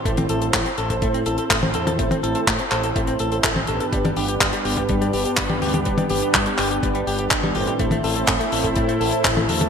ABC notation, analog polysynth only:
X:1
M:4/4
L:1/8
Q:1/4=124
K:Ador
V:1 name="Analog polysynth"
[A,,CEAc] [A,,CEAc] z [A,,CEAc]2 [A,,CEAc]2 [A,,CEAc]- | [A,,CEAc] [A,,CEAc] z [A,,CEAc]2 [A,,CEAc]2 [G,,B,DGB]- | [G,,B,DGB] [G,,B,DGB] z [G,,B,DGB]2 [G,,B,DGB]2 [G,,B,DGB]- | [G,,B,DGB] [G,,B,DGB] z [G,,B,DGB]2 [G,,B,DGB]2 [A,,CEAc]- |
[A,,CEAc] [A,,CEAc] z [A,,CEAc]2 [A,,CEAc]2 [D,A,DFA] |]